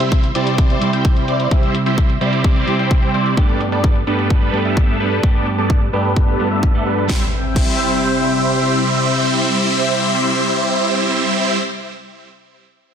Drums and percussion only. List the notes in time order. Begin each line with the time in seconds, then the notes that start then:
0.00 closed hi-hat
0.12 kick, closed hi-hat
0.23 closed hi-hat
0.35 closed hi-hat
0.47 closed hi-hat
0.58 kick, closed hi-hat
0.70 closed hi-hat
0.82 closed hi-hat
0.93 closed hi-hat
1.05 kick, closed hi-hat
1.16 closed hi-hat
1.28 closed hi-hat
1.40 closed hi-hat
1.51 kick, closed hi-hat
1.63 closed hi-hat
1.75 closed hi-hat
1.86 closed hi-hat
1.98 kick, closed hi-hat
2.10 closed hi-hat
2.21 closed hi-hat
2.33 closed hi-hat
2.44 kick, closed hi-hat
2.56 closed hi-hat
2.68 closed hi-hat
2.79 closed hi-hat
2.91 kick, closed hi-hat
3.03 closed hi-hat
3.14 closed hi-hat
3.26 closed hi-hat
3.37 kick, closed hi-hat
3.49 closed hi-hat
3.61 closed hi-hat
3.72 closed hi-hat
3.84 kick, closed hi-hat
3.96 closed hi-hat
4.07 closed hi-hat
4.19 closed hi-hat
4.30 kick, closed hi-hat
4.42 closed hi-hat
4.54 closed hi-hat
4.65 closed hi-hat
4.77 kick, closed hi-hat
4.89 closed hi-hat
5.00 closed hi-hat
5.12 closed hi-hat
5.23 kick, closed hi-hat
5.35 closed hi-hat
5.47 closed hi-hat
5.58 closed hi-hat
5.70 kick, closed hi-hat
5.82 closed hi-hat
5.93 closed hi-hat
6.05 closed hi-hat
6.16 kick, closed hi-hat
6.28 closed hi-hat
6.40 closed hi-hat
6.51 closed hi-hat
6.63 kick, closed hi-hat
6.75 closed hi-hat
6.86 closed hi-hat
6.98 closed hi-hat
7.09 kick, snare
7.56 kick, crash